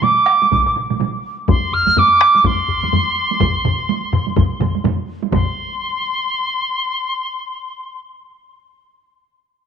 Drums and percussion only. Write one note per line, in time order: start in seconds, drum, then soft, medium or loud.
0.02 taiko mid loud
0.02 taiko high medium
0.26 taiko rim medium
0.42 taiko high medium
0.51 taiko medium
0.51 taiko mid medium
0.51 taiko high medium
0.66 taiko mid medium
0.76 taiko mid medium
0.90 taiko mid medium
0.90 taiko high medium
1.00 taiko mid medium
1.00 taiko high medium
1.48 taiko loud
1.48 taiko low-mid loud
1.48 taiko high medium
1.72 taiko low-mid medium
1.87 taiko low-mid medium
1.87 taiko high medium
1.97 taiko low-mid loud
1.97 taiko high medium
2.21 taiko rim medium
2.35 taiko high medium
2.44 taiko loud
2.44 taiko low-mid loud
2.44 taiko high medium
2.68 taiko low-mid medium
2.83 taiko low-mid medium
2.83 taiko high soft
2.93 taiko low-mid medium
2.93 taiko high medium
3.31 taiko high medium
3.40 taiko loud
3.40 taiko low-mid loud
3.40 taiko mid loud
3.40 taiko high medium
3.65 taiko low-mid medium
3.65 taiko mid loud
3.89 taiko high medium
4.13 taiko low-mid loud
4.13 taiko mid loud
4.28 taiko high medium
4.36 taiko medium
4.36 taiko low-mid loud
4.36 taiko mid loud
4.36 taiko high medium
4.60 taiko low-mid loud
4.60 taiko mid loud
4.60 taiko high medium
4.75 taiko high medium
4.84 taiko low-mid loud
4.84 taiko mid loud
4.84 taiko high medium
5.23 taiko high medium
5.32 taiko medium
5.32 taiko low-mid loud
5.32 taiko mid loud
5.32 taiko high medium